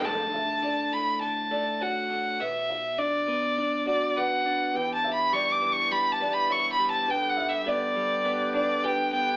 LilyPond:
<<
  \new Staff \with { instrumentName = "Violin" } { \time 4/4 \key d \major \tempo 4 = 102 a''4. b''8 a''4 fis''4 | e''4 d''4. d''8 fis''4 | \tuplet 3/2 { g''8 a''8 b''8 cis'''8 d'''8 cis'''8 b''8 a''8 b''8 cis'''8 b''8 a''8 } | \tuplet 3/2 { g''8 fis''8 e''8 } d''4. d''8 g''8 g''8 | }
  \new Staff \with { instrumentName = "Felt piano" } { \time 4/4 \key d \major a'8 e''8 d''4 r8 d''8 cis''4 | b'8 e''8 d''4 r8 d''8 b'4 | b'8 e''8 d''4 r8 d''8 cis''4 | b'8 e''8 d''4 r8 d''8 b'4 | }
  \new Staff \with { instrumentName = "Harmonium" } { \time 4/4 \key d \major r1 | r1 | g'1~ | g'1 | }
  \new Staff \with { instrumentName = "Harmonium" } { \clef bass \time 4/4 \key d \major r1 | r1 | <e d'>1 | <d b>1 | }
  \new Staff \with { instrumentName = "Clean electric guitar" } { \time 4/4 \key d \major d,4 d8 a,8 d8 a8 fis'8 d8 | b,4 d'8 b8 d'8 fis'8 b'8 d'8 | e,4 g8 e8 g8 b8 e'8 g8 | g,4 b8 g8 b8 d'8 g'8 b8 | }
>>